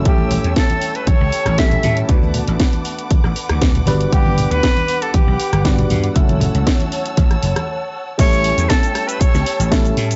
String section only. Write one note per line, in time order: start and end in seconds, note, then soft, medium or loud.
0.00 2.05 C#5 medium
0.00 2.05 E6 medium
0.06 2.07 G5 medium
0.06 3.83 A5 medium
2.09 6.12 B4 medium
2.09 8.15 F#5 medium
2.09 6.12 D6 medium
6.16 8.17 C#5 medium
6.16 8.17 A5 medium
6.16 8.17 E6 medium
8.19 10.16 C#5 medium
8.19 10.16 G5 medium
8.19 10.16 A5 medium
8.19 10.16 E6 medium